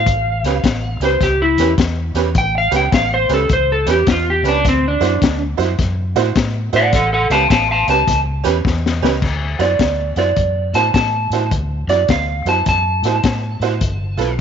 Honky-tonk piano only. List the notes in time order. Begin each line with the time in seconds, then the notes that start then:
0.45 C#4 G4 B4
1.02 C#4 G4 B4
1.59 C#4 G4 B4
2.15 C#4 G4 B4
2.71 C#4 G4 B4
3.29 C#4 G4 B4
3.87 C#4 G4 B4
4.44 C#4 G4 B4
5.00 E4 F#4 C5
5.57 E4 F#4 C5
6.16 E4 F#4 C5
6.73 E4 F#4 C5
7.30 C#4 G4 B4
7.89 C#4 G4 B4
8.44 C#4 G4 B4
9.02 C#4 G4 B4
9.59 E4 F#4 C5
10.17 E4 F#4 C5
10.74 E4 F#4 C5
11.33 E4 F#4 C5
11.89 E4 F#4 D5
12.46 E4 F#4 C5
13.05 E4 F#4 C5
13.62 E4 F#4 C5
14.17 F4 A4 B4